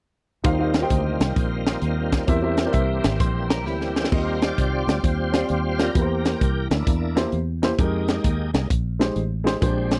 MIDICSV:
0, 0, Header, 1, 6, 480
1, 0, Start_track
1, 0, Key_signature, -3, "major"
1, 0, Tempo, 458716
1, 469, Time_signature, 4, 2, 24, 8
1, 10460, End_track
2, 0, Start_track
2, 0, Title_t, "Clean electric guitar"
2, 0, Program_c, 0, 27
2, 3354, Note_on_c, 0, 72, 65
2, 3650, Note_off_c, 0, 72, 0
2, 3666, Note_on_c, 0, 70, 71
2, 3671, Note_on_c, 0, 67, 63
2, 3823, Note_off_c, 0, 67, 0
2, 3823, Note_off_c, 0, 70, 0
2, 3832, Note_on_c, 0, 67, 65
2, 3842, Note_on_c, 0, 64, 50
2, 4289, Note_off_c, 0, 67, 0
2, 4290, Note_off_c, 0, 64, 0
2, 10460, End_track
3, 0, Start_track
3, 0, Title_t, "Grand piano"
3, 0, Program_c, 1, 0
3, 457, Note_on_c, 1, 63, 69
3, 460, Note_on_c, 1, 67, 71
3, 465, Note_on_c, 1, 51, 67
3, 467, Note_on_c, 1, 72, 68
3, 480, Note_on_c, 1, 77, 85
3, 546, Note_off_c, 1, 63, 0
3, 548, Note_off_c, 1, 67, 0
3, 551, Note_off_c, 1, 72, 0
3, 558, Note_off_c, 1, 77, 0
3, 615, Note_on_c, 1, 63, 73
3, 624, Note_on_c, 1, 67, 64
3, 628, Note_on_c, 1, 72, 69
3, 632, Note_on_c, 1, 77, 84
3, 782, Note_off_c, 1, 63, 0
3, 787, Note_off_c, 1, 67, 0
3, 789, Note_off_c, 1, 72, 0
3, 791, Note_off_c, 1, 77, 0
3, 845, Note_on_c, 1, 63, 76
3, 859, Note_on_c, 1, 67, 67
3, 861, Note_on_c, 1, 72, 73
3, 867, Note_on_c, 1, 79, 85
3, 1219, Note_off_c, 1, 51, 0
3, 1356, Note_off_c, 1, 63, 0
3, 1363, Note_off_c, 1, 67, 0
3, 1365, Note_off_c, 1, 72, 0
3, 1368, Note_off_c, 1, 79, 0
3, 2377, Note_on_c, 1, 60, 76
3, 2384, Note_on_c, 1, 67, 68
3, 2386, Note_on_c, 1, 52, 61
3, 2388, Note_on_c, 1, 70, 70
3, 2397, Note_on_c, 1, 76, 86
3, 2467, Note_off_c, 1, 60, 0
3, 2470, Note_off_c, 1, 67, 0
3, 2472, Note_off_c, 1, 70, 0
3, 2477, Note_off_c, 1, 76, 0
3, 2529, Note_on_c, 1, 60, 78
3, 2537, Note_on_c, 1, 67, 72
3, 2549, Note_on_c, 1, 70, 70
3, 2551, Note_on_c, 1, 76, 81
3, 2700, Note_off_c, 1, 60, 0
3, 2704, Note_off_c, 1, 67, 0
3, 2710, Note_off_c, 1, 70, 0
3, 2711, Note_off_c, 1, 76, 0
3, 2778, Note_on_c, 1, 60, 73
3, 2781, Note_on_c, 1, 67, 69
3, 2790, Note_on_c, 1, 70, 72
3, 2796, Note_on_c, 1, 74, 68
3, 2831, Note_off_c, 1, 74, 0
3, 2850, Note_on_c, 1, 76, 88
3, 3140, Note_off_c, 1, 52, 0
3, 3283, Note_off_c, 1, 60, 0
3, 3285, Note_off_c, 1, 67, 0
3, 3289, Note_off_c, 1, 70, 0
3, 3319, Note_off_c, 1, 76, 0
3, 4302, Note_on_c, 1, 60, 66
3, 4307, Note_on_c, 1, 65, 57
3, 4312, Note_on_c, 1, 51, 54
3, 4316, Note_on_c, 1, 67, 59
3, 4320, Note_on_c, 1, 75, 72
3, 4826, Note_off_c, 1, 60, 0
3, 4828, Note_off_c, 1, 65, 0
3, 4833, Note_off_c, 1, 67, 0
3, 4835, Note_off_c, 1, 75, 0
3, 5062, Note_off_c, 1, 51, 0
3, 5569, Note_on_c, 1, 60, 63
3, 5571, Note_on_c, 1, 65, 54
3, 5582, Note_on_c, 1, 67, 54
3, 5590, Note_on_c, 1, 74, 69
3, 5763, Note_off_c, 1, 60, 0
3, 5764, Note_off_c, 1, 65, 0
3, 5769, Note_off_c, 1, 67, 0
3, 5773, Note_off_c, 1, 74, 0
3, 6056, Note_on_c, 1, 60, 70
3, 6069, Note_on_c, 1, 65, 63
3, 6072, Note_on_c, 1, 67, 62
3, 6074, Note_on_c, 1, 74, 73
3, 6148, Note_off_c, 1, 60, 0
3, 6155, Note_off_c, 1, 65, 0
3, 6156, Note_off_c, 1, 67, 0
3, 6157, Note_off_c, 1, 74, 0
3, 6216, Note_on_c, 1, 58, 69
3, 6225, Note_on_c, 1, 52, 61
3, 6225, Note_on_c, 1, 64, 61
3, 6231, Note_on_c, 1, 67, 64
3, 6237, Note_on_c, 1, 71, 59
3, 6296, Note_on_c, 1, 72, 76
3, 6309, Note_off_c, 1, 71, 0
3, 6742, Note_off_c, 1, 58, 0
3, 6747, Note_off_c, 1, 64, 0
3, 6750, Note_off_c, 1, 67, 0
3, 6782, Note_off_c, 1, 72, 0
3, 6979, Note_off_c, 1, 52, 0
3, 7486, Note_on_c, 1, 58, 76
3, 7495, Note_on_c, 1, 64, 68
3, 7503, Note_on_c, 1, 67, 68
3, 7509, Note_on_c, 1, 72, 84
3, 7680, Note_off_c, 1, 58, 0
3, 7685, Note_off_c, 1, 64, 0
3, 7689, Note_off_c, 1, 67, 0
3, 7692, Note_off_c, 1, 72, 0
3, 7976, Note_on_c, 1, 58, 80
3, 7984, Note_on_c, 1, 64, 77
3, 7990, Note_on_c, 1, 67, 79
3, 7994, Note_on_c, 1, 72, 91
3, 8068, Note_off_c, 1, 58, 0
3, 8072, Note_off_c, 1, 64, 0
3, 8075, Note_off_c, 1, 67, 0
3, 8077, Note_off_c, 1, 72, 0
3, 8145, Note_on_c, 1, 56, 77
3, 8151, Note_on_c, 1, 63, 72
3, 8154, Note_on_c, 1, 67, 75
3, 8166, Note_on_c, 1, 70, 85
3, 8666, Note_off_c, 1, 56, 0
3, 8669, Note_off_c, 1, 63, 0
3, 8671, Note_off_c, 1, 67, 0
3, 8676, Note_off_c, 1, 70, 0
3, 9412, Note_on_c, 1, 56, 78
3, 9414, Note_on_c, 1, 63, 68
3, 9421, Note_on_c, 1, 67, 70
3, 9427, Note_on_c, 1, 72, 81
3, 9602, Note_off_c, 1, 56, 0
3, 9604, Note_off_c, 1, 63, 0
3, 9607, Note_off_c, 1, 67, 0
3, 9610, Note_off_c, 1, 72, 0
3, 9879, Note_on_c, 1, 56, 85
3, 9890, Note_on_c, 1, 63, 73
3, 9898, Note_on_c, 1, 67, 72
3, 9904, Note_on_c, 1, 72, 96
3, 9978, Note_off_c, 1, 56, 0
3, 9984, Note_off_c, 1, 63, 0
3, 9988, Note_off_c, 1, 67, 0
3, 9991, Note_off_c, 1, 72, 0
3, 10051, Note_on_c, 1, 56, 76
3, 10059, Note_on_c, 1, 62, 73
3, 10063, Note_on_c, 1, 46, 69
3, 10070, Note_on_c, 1, 67, 75
3, 10076, Note_on_c, 1, 72, 87
3, 10460, Note_off_c, 1, 46, 0
3, 10460, Note_off_c, 1, 56, 0
3, 10460, Note_off_c, 1, 62, 0
3, 10460, Note_off_c, 1, 67, 0
3, 10460, Note_off_c, 1, 72, 0
3, 10460, End_track
4, 0, Start_track
4, 0, Title_t, "Tonewheel organ"
4, 0, Program_c, 2, 16
4, 474, Note_on_c, 2, 55, 51
4, 474, Note_on_c, 2, 58, 54
4, 474, Note_on_c, 2, 60, 48
4, 479, Note_on_c, 2, 51, 55
4, 479, Note_on_c, 2, 65, 63
4, 2376, Note_off_c, 2, 51, 0
4, 2376, Note_off_c, 2, 65, 0
4, 2389, Note_on_c, 2, 67, 60
4, 2392, Note_on_c, 2, 52, 54
4, 4274, Note_off_c, 2, 55, 0
4, 4274, Note_off_c, 2, 58, 0
4, 4274, Note_off_c, 2, 60, 0
4, 4291, Note_off_c, 2, 67, 0
4, 4292, Note_off_c, 2, 52, 0
4, 4308, Note_on_c, 2, 55, 47
4, 4311, Note_on_c, 2, 60, 44
4, 4317, Note_on_c, 2, 67, 57
4, 4324, Note_on_c, 2, 65, 61
4, 4336, Note_on_c, 2, 70, 78
4, 4608, Note_off_c, 2, 65, 0
4, 4610, Note_off_c, 2, 67, 0
4, 4616, Note_off_c, 2, 70, 0
4, 4620, Note_on_c, 2, 65, 69
4, 4622, Note_on_c, 2, 67, 63
4, 4636, Note_on_c, 2, 74, 106
4, 5257, Note_off_c, 2, 65, 0
4, 5262, Note_off_c, 2, 67, 0
4, 5264, Note_on_c, 2, 72, 78
4, 5269, Note_on_c, 2, 65, 57
4, 5274, Note_on_c, 2, 67, 54
4, 5295, Note_off_c, 2, 74, 0
4, 5713, Note_off_c, 2, 72, 0
4, 5978, Note_on_c, 2, 72, 76
4, 6068, Note_off_c, 2, 72, 0
4, 6072, Note_off_c, 2, 67, 0
4, 6082, Note_on_c, 2, 70, 116
4, 6084, Note_on_c, 2, 67, 76
4, 6187, Note_off_c, 2, 55, 0
4, 6188, Note_off_c, 2, 65, 0
4, 6189, Note_off_c, 2, 60, 0
4, 6990, Note_off_c, 2, 70, 0
4, 6992, Note_off_c, 2, 67, 0
4, 7013, Note_on_c, 2, 58, 48
4, 7026, Note_on_c, 2, 62, 45
4, 7032, Note_on_c, 2, 64, 55
4, 7631, Note_off_c, 2, 58, 0
4, 7638, Note_off_c, 2, 62, 0
4, 7642, Note_off_c, 2, 64, 0
4, 8152, Note_on_c, 2, 58, 47
4, 8152, Note_on_c, 2, 67, 52
4, 8155, Note_on_c, 2, 56, 45
4, 8157, Note_on_c, 2, 63, 52
4, 8903, Note_off_c, 2, 58, 0
4, 8904, Note_off_c, 2, 67, 0
4, 8905, Note_off_c, 2, 56, 0
4, 8906, Note_off_c, 2, 63, 0
4, 8929, Note_on_c, 2, 56, 38
4, 8935, Note_on_c, 2, 55, 45
4, 8935, Note_on_c, 2, 58, 42
4, 8941, Note_on_c, 2, 63, 48
4, 9085, Note_off_c, 2, 56, 0
4, 9087, Note_off_c, 2, 58, 0
4, 9088, Note_off_c, 2, 55, 0
4, 9091, Note_off_c, 2, 63, 0
4, 10060, Note_on_c, 2, 56, 41
4, 10060, Note_on_c, 2, 67, 47
4, 10066, Note_on_c, 2, 60, 41
4, 10068, Note_on_c, 2, 62, 52
4, 10424, Note_off_c, 2, 56, 0
4, 10424, Note_off_c, 2, 67, 0
4, 10427, Note_off_c, 2, 60, 0
4, 10428, Note_off_c, 2, 62, 0
4, 10460, End_track
5, 0, Start_track
5, 0, Title_t, "Fingered electric bass"
5, 0, Program_c, 3, 33
5, 467, Note_on_c, 3, 39, 83
5, 876, Note_off_c, 3, 39, 0
5, 947, Note_on_c, 3, 38, 84
5, 1214, Note_off_c, 3, 38, 0
5, 1258, Note_on_c, 3, 36, 80
5, 1402, Note_off_c, 3, 36, 0
5, 1424, Note_on_c, 3, 34, 83
5, 1835, Note_off_c, 3, 34, 0
5, 1904, Note_on_c, 3, 39, 78
5, 2314, Note_off_c, 3, 39, 0
5, 2385, Note_on_c, 3, 40, 98
5, 2795, Note_off_c, 3, 40, 0
5, 2863, Note_on_c, 3, 36, 78
5, 3133, Note_off_c, 3, 36, 0
5, 3184, Note_on_c, 3, 32, 86
5, 3326, Note_off_c, 3, 32, 0
5, 3348, Note_on_c, 3, 34, 88
5, 3831, Note_off_c, 3, 34, 0
5, 3831, Note_on_c, 3, 38, 73
5, 4238, Note_off_c, 3, 38, 0
5, 4310, Note_on_c, 3, 39, 92
5, 4718, Note_off_c, 3, 39, 0
5, 4792, Note_on_c, 3, 36, 83
5, 5057, Note_off_c, 3, 36, 0
5, 5097, Note_on_c, 3, 38, 80
5, 5241, Note_off_c, 3, 38, 0
5, 5268, Note_on_c, 3, 39, 85
5, 5677, Note_off_c, 3, 39, 0
5, 5754, Note_on_c, 3, 39, 72
5, 6160, Note_off_c, 3, 39, 0
5, 6228, Note_on_c, 3, 40, 94
5, 6636, Note_off_c, 3, 40, 0
5, 6707, Note_on_c, 3, 36, 81
5, 6974, Note_off_c, 3, 36, 0
5, 7017, Note_on_c, 3, 38, 86
5, 7161, Note_off_c, 3, 38, 0
5, 7189, Note_on_c, 3, 40, 88
5, 7597, Note_off_c, 3, 40, 0
5, 7665, Note_on_c, 3, 40, 76
5, 8075, Note_off_c, 3, 40, 0
5, 8147, Note_on_c, 3, 41, 96
5, 8555, Note_off_c, 3, 41, 0
5, 8625, Note_on_c, 3, 39, 71
5, 8893, Note_off_c, 3, 39, 0
5, 8934, Note_on_c, 3, 36, 84
5, 9079, Note_off_c, 3, 36, 0
5, 9107, Note_on_c, 3, 34, 87
5, 9515, Note_off_c, 3, 34, 0
5, 9585, Note_on_c, 3, 33, 77
5, 9994, Note_off_c, 3, 33, 0
5, 10065, Note_on_c, 3, 34, 98
5, 10460, Note_off_c, 3, 34, 0
5, 10460, End_track
6, 0, Start_track
6, 0, Title_t, "Drums"
6, 465, Note_on_c, 9, 42, 85
6, 468, Note_on_c, 9, 36, 109
6, 569, Note_off_c, 9, 42, 0
6, 572, Note_off_c, 9, 36, 0
6, 772, Note_on_c, 9, 42, 60
6, 778, Note_on_c, 9, 38, 101
6, 877, Note_off_c, 9, 42, 0
6, 883, Note_off_c, 9, 38, 0
6, 943, Note_on_c, 9, 42, 82
6, 947, Note_on_c, 9, 36, 82
6, 1048, Note_off_c, 9, 42, 0
6, 1051, Note_off_c, 9, 36, 0
6, 1262, Note_on_c, 9, 42, 68
6, 1266, Note_on_c, 9, 38, 107
6, 1366, Note_off_c, 9, 42, 0
6, 1370, Note_off_c, 9, 38, 0
6, 1427, Note_on_c, 9, 36, 97
6, 1429, Note_on_c, 9, 42, 79
6, 1531, Note_off_c, 9, 36, 0
6, 1533, Note_off_c, 9, 42, 0
6, 1742, Note_on_c, 9, 38, 97
6, 1747, Note_on_c, 9, 42, 61
6, 1847, Note_off_c, 9, 38, 0
6, 1851, Note_off_c, 9, 42, 0
6, 1900, Note_on_c, 9, 42, 66
6, 2005, Note_off_c, 9, 42, 0
6, 2222, Note_on_c, 9, 36, 83
6, 2223, Note_on_c, 9, 42, 68
6, 2224, Note_on_c, 9, 38, 94
6, 2327, Note_off_c, 9, 36, 0
6, 2328, Note_off_c, 9, 42, 0
6, 2329, Note_off_c, 9, 38, 0
6, 2381, Note_on_c, 9, 42, 89
6, 2386, Note_on_c, 9, 36, 116
6, 2486, Note_off_c, 9, 42, 0
6, 2490, Note_off_c, 9, 36, 0
6, 2691, Note_on_c, 9, 42, 53
6, 2697, Note_on_c, 9, 38, 102
6, 2796, Note_off_c, 9, 42, 0
6, 2801, Note_off_c, 9, 38, 0
6, 2856, Note_on_c, 9, 42, 77
6, 2866, Note_on_c, 9, 36, 86
6, 2961, Note_off_c, 9, 42, 0
6, 2970, Note_off_c, 9, 36, 0
6, 3180, Note_on_c, 9, 42, 64
6, 3185, Note_on_c, 9, 38, 110
6, 3285, Note_off_c, 9, 42, 0
6, 3289, Note_off_c, 9, 38, 0
6, 3349, Note_on_c, 9, 36, 99
6, 3349, Note_on_c, 9, 42, 82
6, 3453, Note_off_c, 9, 42, 0
6, 3454, Note_off_c, 9, 36, 0
6, 3667, Note_on_c, 9, 38, 109
6, 3671, Note_on_c, 9, 42, 57
6, 3771, Note_off_c, 9, 38, 0
6, 3776, Note_off_c, 9, 42, 0
6, 3835, Note_on_c, 9, 38, 45
6, 3940, Note_off_c, 9, 38, 0
6, 3990, Note_on_c, 9, 38, 52
6, 4095, Note_off_c, 9, 38, 0
6, 4146, Note_on_c, 9, 38, 83
6, 4231, Note_off_c, 9, 38, 0
6, 4231, Note_on_c, 9, 38, 82
6, 4312, Note_on_c, 9, 49, 86
6, 4313, Note_on_c, 9, 36, 104
6, 4335, Note_off_c, 9, 38, 0
6, 4416, Note_off_c, 9, 49, 0
6, 4418, Note_off_c, 9, 36, 0
6, 4624, Note_on_c, 9, 42, 58
6, 4629, Note_on_c, 9, 38, 109
6, 4728, Note_off_c, 9, 42, 0
6, 4734, Note_off_c, 9, 38, 0
6, 4794, Note_on_c, 9, 36, 78
6, 4795, Note_on_c, 9, 42, 81
6, 4898, Note_off_c, 9, 36, 0
6, 4900, Note_off_c, 9, 42, 0
6, 5112, Note_on_c, 9, 42, 61
6, 5116, Note_on_c, 9, 38, 105
6, 5217, Note_off_c, 9, 42, 0
6, 5221, Note_off_c, 9, 38, 0
6, 5273, Note_on_c, 9, 36, 100
6, 5275, Note_on_c, 9, 42, 82
6, 5377, Note_off_c, 9, 36, 0
6, 5380, Note_off_c, 9, 42, 0
6, 5584, Note_on_c, 9, 38, 104
6, 5589, Note_on_c, 9, 42, 60
6, 5689, Note_off_c, 9, 38, 0
6, 5693, Note_off_c, 9, 42, 0
6, 5743, Note_on_c, 9, 42, 67
6, 5847, Note_off_c, 9, 42, 0
6, 6063, Note_on_c, 9, 42, 69
6, 6064, Note_on_c, 9, 38, 95
6, 6167, Note_off_c, 9, 42, 0
6, 6169, Note_off_c, 9, 38, 0
6, 6228, Note_on_c, 9, 42, 81
6, 6230, Note_on_c, 9, 36, 112
6, 6333, Note_off_c, 9, 42, 0
6, 6334, Note_off_c, 9, 36, 0
6, 6541, Note_on_c, 9, 42, 53
6, 6547, Note_on_c, 9, 38, 99
6, 6646, Note_off_c, 9, 42, 0
6, 6651, Note_off_c, 9, 38, 0
6, 6711, Note_on_c, 9, 36, 84
6, 6713, Note_on_c, 9, 42, 83
6, 6815, Note_off_c, 9, 36, 0
6, 6818, Note_off_c, 9, 42, 0
6, 7021, Note_on_c, 9, 42, 64
6, 7025, Note_on_c, 9, 38, 101
6, 7125, Note_off_c, 9, 42, 0
6, 7130, Note_off_c, 9, 38, 0
6, 7188, Note_on_c, 9, 36, 102
6, 7190, Note_on_c, 9, 42, 89
6, 7293, Note_off_c, 9, 36, 0
6, 7295, Note_off_c, 9, 42, 0
6, 7500, Note_on_c, 9, 38, 107
6, 7505, Note_on_c, 9, 42, 59
6, 7605, Note_off_c, 9, 38, 0
6, 7610, Note_off_c, 9, 42, 0
6, 7663, Note_on_c, 9, 42, 61
6, 7768, Note_off_c, 9, 42, 0
6, 7983, Note_on_c, 9, 42, 72
6, 7984, Note_on_c, 9, 38, 96
6, 8088, Note_off_c, 9, 42, 0
6, 8089, Note_off_c, 9, 38, 0
6, 8147, Note_on_c, 9, 42, 84
6, 8148, Note_on_c, 9, 36, 110
6, 8252, Note_off_c, 9, 36, 0
6, 8252, Note_off_c, 9, 42, 0
6, 8456, Note_on_c, 9, 42, 56
6, 8462, Note_on_c, 9, 38, 98
6, 8561, Note_off_c, 9, 42, 0
6, 8566, Note_off_c, 9, 38, 0
6, 8625, Note_on_c, 9, 42, 83
6, 8627, Note_on_c, 9, 36, 86
6, 8729, Note_off_c, 9, 42, 0
6, 8731, Note_off_c, 9, 36, 0
6, 8938, Note_on_c, 9, 42, 65
6, 8942, Note_on_c, 9, 38, 102
6, 9042, Note_off_c, 9, 42, 0
6, 9047, Note_off_c, 9, 38, 0
6, 9107, Note_on_c, 9, 36, 103
6, 9112, Note_on_c, 9, 42, 91
6, 9211, Note_off_c, 9, 36, 0
6, 9217, Note_off_c, 9, 42, 0
6, 9428, Note_on_c, 9, 38, 102
6, 9432, Note_on_c, 9, 42, 60
6, 9533, Note_off_c, 9, 38, 0
6, 9537, Note_off_c, 9, 42, 0
6, 9583, Note_on_c, 9, 42, 63
6, 9688, Note_off_c, 9, 42, 0
6, 9908, Note_on_c, 9, 42, 71
6, 9909, Note_on_c, 9, 38, 92
6, 10012, Note_off_c, 9, 42, 0
6, 10014, Note_off_c, 9, 38, 0
6, 10066, Note_on_c, 9, 36, 108
6, 10067, Note_on_c, 9, 42, 80
6, 10170, Note_off_c, 9, 36, 0
6, 10172, Note_off_c, 9, 42, 0
6, 10370, Note_on_c, 9, 42, 55
6, 10375, Note_on_c, 9, 38, 104
6, 10460, Note_off_c, 9, 38, 0
6, 10460, Note_off_c, 9, 42, 0
6, 10460, End_track
0, 0, End_of_file